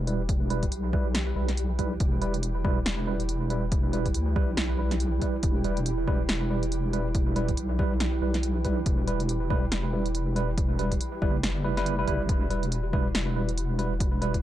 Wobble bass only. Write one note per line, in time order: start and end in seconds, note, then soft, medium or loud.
0.00 0.70 E1 loud
0.72 1.35 B1 loud
1.36 1.99 B1 loud
2.00 2.85 E1 medium
2.86 4.13 E1 medium
4.14 4.56 D2 medium
4.57 5.20 B1 medium
5.43 6.27 E1 medium
6.29 7.56 E1 medium
7.58 8.20 B1 medium
8.22 8.85 B1 loud
8.86 9.70 E1 medium
9.72 10.99 E1 medium
11.22 12.06 F#1 medium
12.08 12.28 F#1 loud
12.29 13.13 E1 medium
13.14 14.42 E1 medium